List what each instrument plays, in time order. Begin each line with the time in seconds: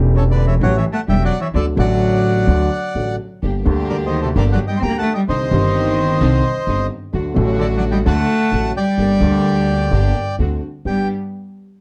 Already playing: upright bass E1, upright piano E1 E2 E3 A3 C#4 G4
0.16 cello C#3, bandoneon A4 C#5
0.31 cello D3, bandoneon B4 D5
0.46 cello E3, bandoneon C#5 E5
0.61 upright bass A1, upright piano A1 A2 E3 A3 C#4 G4, cello F#3, bandoneon C#5 F#5
0.77 cello E3, bandoneon C#5 E5
0.92 cello A3, bandoneon F#5 A5
1.08 upright bass E1, upright piano E1 E2 E3 A3 C#4 G4, cello G3, bandoneon E5 G5
1.22 cello F#3, bandoneon D5 F#5
1.39 cello E3, bandoneon C#5 E5
1.54 upright bass D2, upright piano D2 D3 F#3 A3 F#4, cello D3, bandoneon A4 D5
1.76 upright bass A1, upright piano A1 A2 D3 F#3 A3, cello F#3, bandoneon D5 F#5
1.80 upright piano F#4
2.47 upright bass D2, upright piano D2 D3 F#3 A3 F#4
2.95 upright bass A1, upright piano A1 A2 D3 F#3 A3 F#4
3.42 upright bass G1, upright piano G1 G2 D3 G3 A#3 G4, string section A#3 D4 G4
3.65 upright bass D2, upright piano D2 D3 G3 A#3 G4, string section A#3 D4 G4
3.89 cello D3, bandoneon A#4 D5
4.06 cello D#3, bandoneon C5 D#5
4.22 cello C3, bandoneon A4 C5
4.36 upright bass G1, upright piano G1 G2 D3 G3 A#3 G4, cello D3, string section A#3 D4 G4, bandoneon A#4 D5
4.52 cello F#3, bandoneon D5 F#5
4.67 cello G3, bandoneon D#5 G5
4.77 cello C4, bandoneon C6
4.82 upright bass D2, upright piano D2 D3 G3 A#3 G4, string section A#3 D4 G4, cello A#3, bandoneon G5 A#5
4.98 cello A3, bandoneon F#5 A5
5.14 cello G3, bandoneon D#5 G5
5.28 upright bass C2, upright piano C2 C3 D3 G3 C4 D#4, cello D#3, string section C4 D4 D#4, bandoneon C5 D#5
5.51 upright bass G1, upright piano G1 G2 D#3 G3 C4, string section C4 D#4
5.56 upright piano D#4
6.20 upright bass C2, upright piano C2 C3 D3 G3 C4 D#4, string section C4 D4 D#4
6.67 upright bass G1, upright piano G1 G2 D3 G3 C4 D#4, string section C4 D4 D#4
7.13 upright piano D2 D3 F#3 A3 F#4, upright bass D2, string section A3 D4 F#4
7.34 upright piano A1 A2 D3 F#3 A3, upright bass A1, string section A3 D4 F#4
7.38 upright piano F#4
7.59 cello D3, bandoneon A4 D5
7.77 cello F#3, bandoneon D5 F#5
7.91 cello G3, bandoneon D#5 G5
8.06 upright piano D2 D3 F#3 A3 F#4, upright bass D2, string section A3 D4 F#4, cello A3, bandoneon F#5 A5
8.52 upright bass A1, upright piano A1 A2 D3 F#3 A3 F#4, string section A3 D4 F#4
8.77 cello G3, bandoneon D5 G5
8.98 upright bass G1, upright piano G1 G2 D3 G3 A#3 G4, string section A#3 D4 G4
9.20 upright bass D2, upright piano D2 D3 G3 A#3, string section A#3 D4 G4
9.25 upright piano G4
9.91 upright bass G1, upright piano G1 G2 D3 G3 A#3 G4, string section A#3 D4 G4
10.39 upright bass D2, upright piano D2 D3 A3 C4 F#4, string section C4 D4 F#4
10.85 upright bass G1, upright piano G2 B3 D4 G4, cello G3, string section B3 D4 G4, bandoneon G5